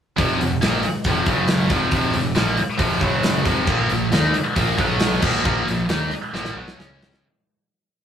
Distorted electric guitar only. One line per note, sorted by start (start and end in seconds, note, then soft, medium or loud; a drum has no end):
0.17 0.38 F2 medium
0.17 0.39 C3 medium
0.17 0.39 F3 loud
0.39 0.57 F2 medium
0.39 0.57 C3 medium
0.62 0.83 A#2 medium
0.62 0.83 F3 medium
0.62 0.83 A#3 medium
0.84 muted distorted electric guitar stroke medium
1.07 1.27 F2 medium
1.07 1.27 C3 medium
1.07 1.28 F3 loud
1.28 1.70 F#2 medium
1.28 1.70 C#3 medium
1.28 1.71 F#3 medium
1.70 1.91 F2 medium
1.70 1.92 C3 loud
1.70 1.92 F3 loud
1.94 2.14 F2 medium
1.94 2.14 C3 medium
1.94 2.15 F3 loud
2.15 2.32 F2 medium
2.15 2.32 C3 medium
2.35 2.57 A#2 loud
2.35 2.57 F3 medium
2.35 2.58 A#3 medium
2.58 muted distorted electric guitar stroke medium
2.78 3.00 F2 medium
2.78 3.00 C3 medium
2.78 3.01 F3 loud
3.01 3.45 F#2 loud
3.01 3.45 C#3 medium
3.01 3.45 F#3 medium
3.46 3.67 F2 loud
3.46 3.67 C3 medium
3.46 3.67 F3 medium
3.67 3.89 A#2 medium
3.67 3.89 F3 medium
3.67 3.89 A#3 loud
3.91 4.08 A#2 medium
3.91 4.08 F3 medium
4.12 4.33 D#3 medium
4.12 4.34 A#3 medium
4.12 4.34 D#4 loud
4.34 muted distorted electric guitar stroke medium
4.56 4.77 A#2 medium
4.56 4.78 F3 medium
4.56 4.78 A#3 loud
4.77 5.21 B2 medium
4.77 5.22 F#3 loud
4.77 5.22 B3 medium
5.23 5.44 A#2 medium
5.23 5.44 F3 medium
5.23 5.45 A#3 medium
5.45 5.66 A#2 medium
5.45 5.66 F3 medium
5.45 5.67 A#3 medium
5.67 5.85 A#2 medium
5.67 5.85 F3 medium
5.89 6.11 D#3 medium
5.89 6.11 A#3 loud
5.89 6.11 D#4 loud
6.12 muted distorted electric guitar stroke medium
6.34 6.56 A#2 medium
6.34 6.56 F3 medium
6.34 6.56 A#3 medium
6.56 6.78 B2 medium
6.56 6.78 F#3 loud
6.56 6.78 B3 medium
6.79 7.23 C#3 medium
6.79 7.23 G#3 medium
6.79 7.23 C#4 loud